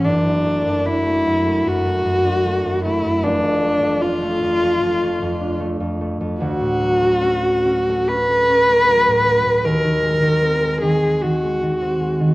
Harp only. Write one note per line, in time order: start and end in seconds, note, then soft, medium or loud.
0.05 3.27 F#1 soft
0.25 0.64 F#2 soft
0.46 1.05 A3 soft
0.66 1.25 F#2 soft
0.86 2.24 D4 soft
1.06 1.45 A3 soft
1.26 1.64 F#2 soft
1.46 1.84 A3 soft
1.65 2.04 F#2 soft
1.85 2.44 A3 soft
2.05 2.64 F#2 soft
2.25 4.01 D4 soft
2.45 2.84 A3 soft
2.65 3.03 F#2 soft
2.85 3.62 A3 soft
3.04 3.27 F#2 soft
3.23 6.43 F1 soft
3.43 3.81 F2 soft
3.63 4.21 A3 soft
3.83 4.41 F2 soft
4.02 5.39 D4 soft
4.22 4.61 A3 soft
4.42 4.82 F2 soft
4.62 5.01 A3 soft
4.83 5.21 F2 soft
5.02 5.59 A3 soft
5.22 5.79 F2 soft
5.41 9.31 D4 soft
5.60 6.00 A3 soft
5.80 6.19 F2 soft
6.01 7.00 A3 soft
6.21 6.44 F2 soft
6.41 9.68 D2 soft
6.61 9.07 A2 soft
6.81 8.87 F#3 soft
7.02 7.88 A3 soft
7.21 7.64 C#4 soft
7.43 11.33 F#4 soft
7.65 8.08 C#4 soft
7.89 8.29 A3 soft
8.09 8.48 C#4 soft
8.30 8.68 A3 soft
8.49 9.68 C#4 soft
8.69 9.68 A3 soft
8.88 9.25 F#3 soft
9.08 9.44 A2 soft
9.26 12.34 F#3 soft
9.45 9.68 A2 soft
9.64 12.34 D#2 soft
9.84 10.21 D#3 soft
10.03 10.60 G#3 soft
10.22 10.80 D#3 soft
10.41 11.81 C4 soft
10.61 11.01 G#3 soft
10.82 11.22 D#3 soft
11.02 11.42 G#3 soft
11.23 11.61 D#3 soft
11.43 11.99 G#3 soft
11.63 12.19 D#3 soft
11.82 12.34 C4 soft
12.00 12.34 G#3 soft
12.20 12.34 D#3 soft